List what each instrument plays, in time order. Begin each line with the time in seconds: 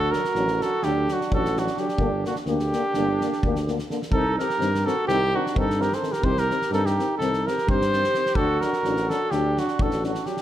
Already playing: tuba D2, flugelhorn F#4, trumpet A4
0.12 euphonium D3 F#3, flugelhorn F#4, trumpet A#4, snare
0.24 snare
0.34 tuba A1, euphonium D3 F#3, snare
0.48 snare
0.60 euphonium D3 F#3, flugelhorn F#4, trumpet A4, snare
0.82 tuba D2, euphonium D3 F#3, flugelhorn D4, trumpet G4, snare
1.08 euphonium D3 F#3, snare
1.13 flugelhorn D4, trumpet F#4
1.21 snare
1.31 tuba A1, euphonium D3 F#3, flugelhorn F#4, trumpet A4, kick
1.45 snare
1.56 euphonium D3 F#3, flugelhorn D4, trumpet F#4, snare
1.67 snare
1.77 euphonium D3 F#3, flugelhorn D4, trumpet G4, snare
1.89 snare
1.97 tuba G1, euphonium D3 A#3, kick
2.25 euphonium D3 A#3, trumpet F#4, snare
2.29 flugelhorn D4
2.35 snare
2.46 tuba D2, euphonium D3 A#3, trumpet G4, snare
2.52 flugelhorn D4
2.59 snare
2.73 euphonium D3 A#3, snare
2.94 tuba G1, euphonium D3 A#3, snare
3.21 euphonium D3 A#3, snare
3.33 snare
3.43 tuba D2, euphonium D3 A#3, kick
3.56 snare
3.68 euphonium D3 A#3, snare
3.79 snare
3.90 euphonium D3 A#3, snare
4.02 snare
4.10 tuba C2, euphonium D#3 C4, flugelhorn D#4, trumpet A4, kick
4.37 euphonium D#3 C4, flugelhorn G4, trumpet A#4, snare
4.50 snare
4.58 tuba G2, euphonium D#3 C4, snare
4.75 snare
4.85 euphonium D#3 C4, flugelhorn F#4, trumpet A4, snare
5.07 tuba C2, euphonium D#3 C4, flugelhorn D#4, trumpet G4, snare
5.33 euphonium D#3 C4, flugelhorn D4, trumpet F#4
5.46 snare
5.54 tuba G2, euphonium D#3 C4, flugelhorn D#4, kick
5.58 trumpet A4
5.70 snare
5.79 euphonium D#3 C4, flugelhorn G4, trumpet A#4, snare
5.92 flugelhorn A4, trumpet C5, snare
6.01 euphonium D#3 C4, snare
6.11 flugelhorn G4, trumpet A#4, snare
6.22 tuba C2, euphonium D#3 C4, flugelhorn G4, trumpet C5, kick
6.37 flugelhorn G4, trumpet A#4, snare
6.49 euphonium D#3 C4, snare
6.62 snare
6.70 tuba G2, euphonium D#3 C4, flugelhorn D#4, trumpet A4, snare
6.84 flugelhorn D#4, trumpet G4, snare
6.97 euphonium D#3 C4, snare
7.18 tuba C2, euphonium D#3 C4, flugelhorn D#4, trumpet A4, snare
7.33 snare
7.45 euphonium D#3 C4, flugelhorn G4, trumpet A#4, snare
7.58 snare
7.67 tuba G2, euphonium D#3 C4, flugelhorn G4, trumpet C5, kick
7.81 snare
7.93 euphonium D#3 C4, snare
8.04 snare
8.14 euphonium D#3 C4, snare
8.26 snare
8.34 tuba D2, euphonium F#3 D4, trumpet A4, kick
8.39 flugelhorn F#4
8.60 euphonium F#3 D4, trumpet A#4, snare
8.64 flugelhorn F#4
8.73 snare
8.83 tuba A1, euphonium F#3 D4, snare
8.96 snare
9.08 euphonium F#3 D4, trumpet A4, snare
9.12 flugelhorn F#4
9.30 tuba D2, euphonium F#3 D4, flugelhorn D4, trumpet G4, snare
9.57 euphonium F#3 D4, flugelhorn D4, trumpet F#4, snare
9.68 snare
9.79 tuba A1, euphonium F#3 D4, flugelhorn F#4, trumpet A4, kick
9.91 snare
10.03 euphonium F#3 D4, flugelhorn D4, trumpet F#4, snare
10.15 snare
10.25 euphonium F#3 D4, flugelhorn D4, trumpet G4, snare
10.37 snare